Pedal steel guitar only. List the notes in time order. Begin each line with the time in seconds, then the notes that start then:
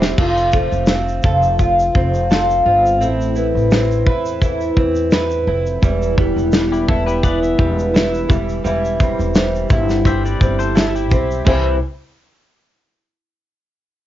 6.72 E4 G4
6.88 A4
7.06 G4 B4
7.24 B4 D5
7.43 E5
10.07 C5 E5
10.25 B4 D5
10.59 A4 C5
10.76 A4
10.95 E4 G4